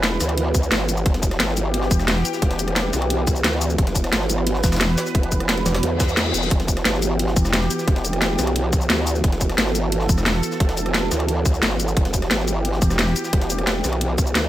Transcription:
Already playing: wobble bass E1, analog synth pad E3 B3 F#4 B4
0.03 snare, closed hi-hat
0.20 wobble bass D2, cross-stick, snare, closed hi-hat, shaker
0.29 cross-stick, closed hi-hat
0.37 closed hi-hat
0.54 kick, closed hi-hat, shaker
0.63 shaker
0.72 wobble bass G1, snare, closed hi-hat
0.89 closed hi-hat, shaker
0.97 shaker
1.06 wobble bass E1, analog synth pad G4, kick, closed hi-hat
1.14 snare, closed hi-hat
1.23 kick, closed hi-hat, shaker
1.31 cross-stick, snare, closed hi-hat
1.40 wobble bass G1, snare, closed hi-hat
1.48 snare
1.57 closed hi-hat, shaker
1.74 closed hi-hat
1.82 snare
1.91 wobble bass E1, kick, closed hi-hat, shaker
1.99 cross-stick, snare, shaker
2.08 snare, closed hi-hat
2.17 snare
2.25 closed hi-hat, shaker
2.34 snare, shaker
2.42 wobble bass E1, kick, closed hi-hat
2.51 snare, closed hi-hat
2.59 closed hi-hat, shaker
2.68 cross-stick, closed hi-hat
2.76 snare, closed hi-hat
2.93 wobble bass B1, cross-stick, snare, closed hi-hat, shaker
3.02 cross-stick, closed hi-hat
3.10 closed hi-hat
3.27 kick, closed hi-hat, shaker
3.36 shaker
3.44 wobble bass D2, snare, closed hi-hat
3.61 closed hi-hat, shaker
3.70 shaker
3.78 wobble bass E1, analog synth pad B4, kick, closed hi-hat
3.87 snare, closed hi-hat
3.95 kick, closed hi-hat, shaker
4.04 cross-stick, snare, closed hi-hat
4.13 wobble bass G1, snare, closed hi-hat
4.21 snare
4.30 closed hi-hat, shaker
4.38 cross-stick
4.47 closed hi-hat
4.55 snare
4.64 wobble bass E1, kick, snare, closed hi-hat, shaker
4.72 cross-stick, snare, closed hi-hat, shaker
4.76 snare, closed hi-hat
4.81 snare, closed hi-hat
4.89 snare
4.98 snare, closed hi-hat, shaker
5.06 snare, shaker
5.15 wobble bass E1, kick, closed hi-hat
5.23 closed hi-hat
5.32 kick, closed hi-hat, shaker
5.40 cross-stick, closed hi-hat
5.49 snare, closed hi-hat
5.57 closed hi-hat
5.66 wobble bass E1, cross-stick, snare, closed hi-hat, shaker
5.74 cross-stick, snare, closed hi-hat
5.83 wobble bass E2, closed hi-hat, reverse cymbal
6.00 kick, snare, closed hi-hat, shaker
6.09 snare, shaker
6.17 snare, closed hi-hat
6.34 wobble bass E1, closed hi-hat, shaker
6.43 shaker
6.51 wobble bass E1, analog synth pad G4, kick, closed hi-hat
6.60 snare, closed hi-hat
6.68 kick, closed hi-hat, shaker
6.77 cross-stick, snare, closed hi-hat
6.85 wobble bass G1, snare, closed hi-hat
6.94 snare
7.02 closed hi-hat, shaker
7.19 closed hi-hat
7.28 snare
7.36 wobble bass E1, kick, closed hi-hat, shaker
7.45 cross-stick, snare, shaker
7.53 snare, closed hi-hat
7.62 snare
7.71 closed hi-hat, shaker
7.79 snare, shaker
7.88 wobble bass E1, kick, closed hi-hat
7.96 snare, closed hi-hat
8.05 closed hi-hat, shaker
8.13 cross-stick, closed hi-hat
8.22 snare, closed hi-hat
8.39 wobble bass B1, cross-stick, snare, closed hi-hat, shaker
8.47 cross-stick, closed hi-hat
8.56 closed hi-hat
8.73 kick, closed hi-hat, shaker
8.81 shaker
8.90 wobble bass D2, snare, closed hi-hat
9.07 closed hi-hat, shaker
9.15 shaker
9.24 wobble bass E1, analog synth pad A4, kick, closed hi-hat
9.32 snare, closed hi-hat
9.41 kick, closed hi-hat, shaker
9.49 cross-stick, snare, closed hi-hat
9.58 wobble bass G1, snare, closed hi-hat
9.66 snare
9.75 closed hi-hat, shaker
9.92 closed hi-hat
10.01 snare
10.09 wobble bass E1, kick, closed hi-hat, shaker
10.18 cross-stick, snare, shaker
10.26 snare, closed hi-hat
10.35 snare
10.43 closed hi-hat, shaker
10.52 snare, shaker
10.60 wobble bass E1, kick, closed hi-hat
10.69 snare, closed hi-hat
10.77 closed hi-hat, shaker
10.86 cross-stick, closed hi-hat
10.94 snare, closed hi-hat
11.11 wobble bass D2, cross-stick, snare, closed hi-hat, shaker
11.20 cross-stick, closed hi-hat
11.28 closed hi-hat
11.45 kick, closed hi-hat, shaker
11.54 shaker
11.63 wobble bass G1, snare, closed hi-hat
11.80 closed hi-hat, shaker
11.88 shaker
11.97 wobble bass E1, analog synth pad G4, kick, closed hi-hat
12.05 snare, closed hi-hat
12.14 kick, closed hi-hat, shaker
12.22 cross-stick, snare, closed hi-hat
12.31 wobble bass G1, snare, closed hi-hat
12.39 snare
12.48 closed hi-hat, shaker
12.65 closed hi-hat
12.73 snare
12.82 wobble bass E1, kick, closed hi-hat, shaker
12.90 cross-stick, snare, shaker
12.99 snare, closed hi-hat
13.07 snare
13.16 closed hi-hat, shaker
13.24 snare, shaker
13.33 wobble bass E1, kick, closed hi-hat
13.41 snare, closed hi-hat
13.50 closed hi-hat, shaker
13.58 cross-stick, closed hi-hat
13.67 snare, closed hi-hat
13.84 wobble bass B1, cross-stick, snare, closed hi-hat, shaker
13.93 cross-stick, closed hi-hat
14.01 closed hi-hat
14.18 kick, closed hi-hat, shaker
14.27 shaker
14.35 wobble bass D2, snare, closed hi-hat

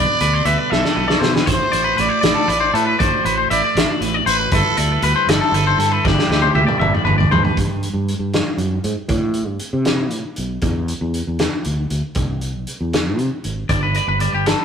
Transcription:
Already playing: clean electric guitar B2 G3 E4 B4 D5, trumpet D5
0.20 fretless electric bass D2, clean electric guitar A4 B4, closed hi-hat
0.33 clean electric guitar C5
0.45 fretless electric bass D2, clean electric guitar G3 A4 E5, trumpet B4, closed hi-hat
0.58 clean electric guitar D5
0.70 fretless electric bass B1, clean electric guitar E4 E5, trumpet A4, snare
0.84 clean electric guitar D5, snare
0.96 fretless electric bass B1, clean electric guitar B2 B4
1.08 clean electric guitar D5, snare
1.20 fretless electric bass B2, clean electric guitar C5, snare
1.24 clean electric guitar E4
1.34 clean electric guitar B4, snare
1.46 fretless electric bass A1, clean electric guitar A2 F#4 C5, trumpet C5, kick, closed hi-hat
1.72 fretless electric bass A1, clean electric guitar F#4 D5, closed hi-hat
1.84 clean electric guitar B4
1.97 fretless electric bass A1, clean electric guitar A3 F#4 B4, trumpet D5, closed hi-hat
2.09 clean electric guitar C5
2.21 fretless electric bass A1, clean electric guitar D5, snare, closed hi-hat
2.25 clean electric guitar E4
2.35 clean electric guitar F#4 A4
2.48 fretless electric bass A1, clean electric guitar A2 B4, closed hi-hat
2.60 clean electric guitar C5
2.74 fretless electric bass A2, clean electric guitar E4 A4, trumpet B4, closed hi-hat
2.85 clean electric guitar F#4 B4
2.99 fretless electric bass A1, clean electric guitar A2 F#4 D5, trumpet C5, kick, closed hi-hat
3.25 fretless electric bass A1, clean electric guitar F#4 B4, closed hi-hat
3.38 clean electric guitar C5
3.50 fretless electric bass A1, clean electric guitar A3 E4 E5, trumpet D5, closed hi-hat
3.64 clean electric guitar F#4 D5
3.75 fretless electric bass A1, clean electric guitar E5, snare, closed hi-hat
3.79 clean electric guitar F#4
3.90 clean electric guitar D5
4.01 fretless electric bass A1, clean electric guitar A2 B4, closed hi-hat
4.14 clean electric guitar D5
4.26 fretless electric bass A1, clean electric guitar F#4 C5, trumpet B4, closed hi-hat
4.39 clean electric guitar B4
4.51 fretless electric bass G1, clean electric guitar G2 E4 B4, trumpet A4, kick, closed hi-hat
4.77 fretless electric bass D2, clean electric guitar E4 D5, closed hi-hat
4.92 clean electric guitar B4
5.02 fretless electric bass D2, clean electric guitar G3 A4 B4, trumpet B4, closed hi-hat
5.16 clean electric guitar C5
5.27 fretless electric bass G1, clean electric guitar E4 D5, snare, closed hi-hat
5.33 trumpet A4
5.41 clean electric guitar A4
5.52 fretless electric bass G1, clean electric guitar D3 B4, closed hi-hat
5.67 clean electric guitar C5
5.78 fretless electric bass G2, clean electric guitar E4 A4, closed hi-hat
5.92 clean electric guitar B4
6.04 fretless electric bass G1, clean electric guitar G2 E4 D5, trumpet G4, kick, snare
6.19 snare
6.29 fretless electric bass D2, clean electric guitar E4 B4, snare
6.42 clean electric guitar C5, high tom
6.55 fretless electric bass D2, clean electric guitar G3 E4 E5, high tom
6.67 clean electric guitar D5, mid tom
6.80 fretless electric bass G1, clean electric guitar E4 E5, mid tom
6.94 clean electric guitar D5, mid tom
7.05 fretless electric bass G1, clean electric guitar D3 B4, mid tom
7.18 clean electric guitar D5, floor tom
7.31 fretless electric bass G2, clean electric guitar B4 C5, floor tom
7.43 clean electric guitar B4, floor tom
7.57 fretless electric bass G2, kick, closed hi-hat
7.83 closed hi-hat
7.94 fretless electric bass G2
8.08 closed hi-hat
8.19 fretless electric bass G2
8.33 snare, closed hi-hat
8.57 fretless electric bass F#2, closed hi-hat
8.84 fretless electric bass G#2, closed hi-hat
9.08 fretless electric bass A2, kick, closed hi-hat
9.34 closed hi-hat
9.47 fretless electric bass G2
9.59 closed hi-hat
9.73 fretless electric bass C3
9.85 snare, closed hi-hat
10.10 fretless electric bass A2, closed hi-hat
10.36 fretless electric bass B1, closed hi-hat
10.61 fretless electric bass E2, kick, closed hi-hat
10.88 closed hi-hat
11.01 fretless electric bass E2
11.14 closed hi-hat
11.27 fretless electric bass E2
11.39 snare, closed hi-hat
11.64 fretless electric bass D2, closed hi-hat
11.90 fretless electric bass D2, closed hi-hat
12.15 fretless electric bass C2, kick, closed hi-hat
12.41 closed hi-hat
12.55 fretless electric bass B1
12.67 closed hi-hat
12.81 fretless electric bass E2
12.93 snare, closed hi-hat
13.18 fretless electric bass C3, closed hi-hat
13.44 fretless electric bass G#1, closed hi-hat
13.69 fretless electric bass G1, clean electric guitar G2 D5, kick, closed hi-hat
13.83 clean electric guitar B4
13.94 clean electric guitar B4 D5, closed hi-hat
14.08 fretless electric bass G1, clean electric guitar B4
14.20 clean electric guitar G3 D5, closed hi-hat
14.33 fretless electric bass G1, clean electric guitar G4
14.46 clean electric guitar A4 B4, snare, closed hi-hat

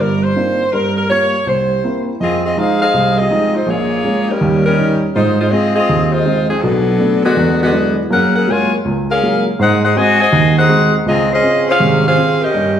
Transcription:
0.00 upright piano G1 G2, saxophone section A#4
0.23 saxophone section C5
0.36 upright piano A#3 C4 D4 D#4 F4
0.73 upright piano G2, saxophone section A#4
0.97 saxophone section A#4
1.09 upright piano G3 A#3 F4, saxophone section C#5
1.47 upright piano C2, saxophone section C5
1.84 upright piano A#3 C4 E4
2.20 upright piano F2, saxophone section C4 F4 G#4 D#5
2.45 saxophone section C4 F4 G#4 D#5
2.57 upright piano F3 G#3 D#4, saxophone section D#4 G#4 C5 F5
2.81 saxophone section D#4 G#4 C5 F5
2.94 upright piano C2
3.18 saxophone section C4 F4 G#4 D#5
3.30 upright piano F3 G#3 D#4
3.55 saxophone section G#3 D#4 F4 C5
3.67 upright piano A#1 A#2, saxophone section A#3 F4 G#4 C#5
4.05 upright piano G#3 A#3 C#4
4.30 saxophone section G3 C#4 D#4 A#4
4.41 upright piano D#2 G3
4.66 saxophone section G3 C#4 D#4 A#4
4.78 upright piano G3 C#4 D#4
5.15 upright piano G#2, saxophone section G#3 D#4 F4 C5
5.39 saxophone section G#3 D#4 F4 C5
5.51 upright piano G#3 C4 F4, saxophone section C4 F4 G#4 D#5
5.75 saxophone section C4 F4 G#4 D#5
5.89 upright piano D#2
6.12 saxophone section G#3 D#4 F4 C5
6.26 upright piano G#3 C4 F4
6.50 saxophone section F3 C4 D#4 G#4
6.62 upright piano B1 B2, saxophone section F#3 B3 D4 A4
6.99 upright piano A3 B3 D4
7.24 saxophone section D3 G#3 B3 F#4
7.37 upright piano E2
7.62 saxophone section D3 G#3 B3 F#4
7.72 upright piano F#3 G#3 D4 E4
8.10 upright piano F#2 A#3, saxophone section C#4 G#4 A#4 F#5
8.36 saxophone section C#4 G#4 A#4 F#5
8.47 upright piano F#3 G#3 A#3 F4, saxophone section F4 A#4 C#5 G#5
8.85 upright piano C#2
9.11 saxophone section C#4 G#4 A#4 F5
9.22 upright piano F#3 G#3 A#3 F4
9.59 upright piano G#2, saxophone section D#4 G#4 C5 F#5
9.84 saxophone section D#4 G#4 C5 F#5
9.96 upright piano G#3 C4 F#4, saxophone section F#4 C5 D#5 G#5
10.20 saxophone section F#4 C5 D#5 G#5
10.32 upright piano D#2 D#3
10.59 saxophone section D#4 G#4 C5 F#5
10.69 upright piano G#3 C4 F#4
11.06 upright piano C#2, saxophone section C4 F4 G#4 D#5
11.33 saxophone section C#4 G#4 C5 D#5
11.42 upright piano C4 C#4 F4
11.69 saxophone section C#4 G#4 C5 F5
11.80 upright piano G#1 C3
12.07 saxophone section C#4 G#4 C5 F5
12.17 upright piano C4 C#4 F4
12.42 saxophone section C#4 G4 A#4 D#5
12.54 upright piano G2

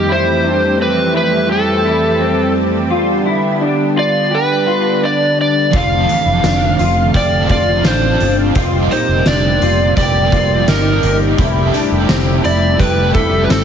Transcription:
Already playing: analog synth pad F2 G3 G4, electric slide guitar G4
0.08 analog synth pad E3 A3 C4, clean electric guitar E4
0.12 electric slide guitar C5
0.44 clean electric guitar D4
0.79 clean electric guitar C4, electric slide guitar B4
1.14 clean electric guitar E4, electric slide guitar B4
1.50 clean electric guitar G4, electric slide guitar A4
1.85 clean electric guitar E4
2.19 clean electric guitar C4
2.90 analog synth pad D3 B3 D4, clean electric guitar F4
3.26 clean electric guitar E4
3.61 clean electric guitar D4
3.96 clean electric guitar F4, electric slide guitar D5
4.31 clean electric guitar G4, electric slide guitar B4
4.67 clean electric guitar F4
5.02 clean electric guitar D4, electric slide guitar D5
5.41 electric slide guitar D5
5.71 fingered electric bass F1, analog synth pad C3 A3 C4 F5, overdriven electric guitar D3 F3 C4, clean electric guitar F4, kick, closed hi-hat
5.76 overdriven electric guitar A4 C5, electric slide guitar F5
6.08 clean electric guitar E3, closed hi-hat
6.25 fingered electric bass F1
6.43 fingered electric bass F1, clean electric guitar D4, snare, closed hi-hat, tambourine
6.79 fingered electric bass F1, clean electric guitar F4, closed hi-hat
7.14 fingered electric bass F1, overdriven electric guitar D3 F3 C4 F4 A4 C5, clean electric guitar G4, electric slide guitar D5, kick, closed hi-hat
7.49 fingered electric bass F1, clean electric guitar F4, electric slide guitar D5, kick, closed hi-hat
7.84 fingered electric bass A1, overdriven electric guitar C4 F4 C5, clean electric guitar D4, electric slide guitar C5, snare, closed hi-hat, tambourine
7.89 overdriven electric guitar A4
8.20 fingered electric bass G1, closed hi-hat
8.55 fingered electric bass F1, analog synth pad A#2 G3 A#3 G4, overdriven electric guitar D3 F3 G3 G4 A#4 D#5, clean electric guitar F4, kick, closed hi-hat
8.91 overdriven electric guitar G3 G4 A#4, clean electric guitar D#4, electric slide guitar C5, closed hi-hat
9.08 fingered electric bass F1
9.26 fingered electric bass F1, clean electric guitar D4, electric slide guitar D5, snare, closed hi-hat, tambourine
9.61 fingered electric bass F1, clean electric guitar F4, closed hi-hat
9.96 fingered electric bass F1, overdriven electric guitar D3 F3 G3 G4 A#4, clean electric guitar G4, electric slide guitar D5, kick, closed hi-hat
10.32 fingered electric bass F1, clean electric guitar F4, kick, closed hi-hat
10.67 fingered electric bass G1, overdriven electric guitar G3 G4 A#4, clean electric guitar D#4, electric slide guitar A#4, snare, closed hi-hat, tambourine
10.72 overdriven electric guitar D#5
11.03 fingered electric bass G1, closed hi-hat
11.37 fingered electric bass F1, analog synth pad C3 G3 A3 E4, overdriven electric guitar F3 G3 C4 E4 G4 A4, clean electric guitar E4, kick, closed hi-hat
11.73 clean electric guitar D4, overdriven electric guitar E4 G4 A4, closed hi-hat
11.78 overdriven electric guitar C4
11.91 fingered electric bass F1
12.09 fingered electric bass F1, clean electric guitar C4, snare, closed hi-hat, tambourine
12.44 fingered electric bass F1, clean electric guitar E4, electric slide guitar D5, closed hi-hat
12.77 fingered electric bass F1, overdriven electric guitar F3 G3 C4, clean electric guitar G4, electric slide guitar B4, kick, closed hi-hat
12.82 overdriven electric guitar E4 G4 A4
13.14 fingered electric bass F1, clean electric guitar E4, electric slide guitar A4, kick, closed hi-hat
13.44 electric slide guitar B4
13.49 fingered electric bass G1, clean electric guitar C4, electric slide guitar A4, snare, closed hi-hat, tambourine

